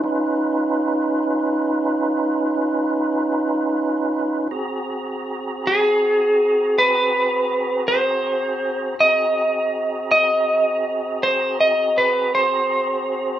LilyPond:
<<
  \new Staff \with { instrumentName = "Lead electric guitar" } { \time 12/8 \key aes \dorian \tempo 4. = 54 r1. | r4. aes'4. ces''4. c''4. | ees''4. ees''4. c''8 ees''8 ces''8 c''4. | }
  \new Staff \with { instrumentName = "Tonewheel organ" } { \time 12/8 \key aes \dorian <des' ees' f' ces''>1. | <c' ges' aes' bes''>1. | <c' ges' aes' bes''>1. | }
>>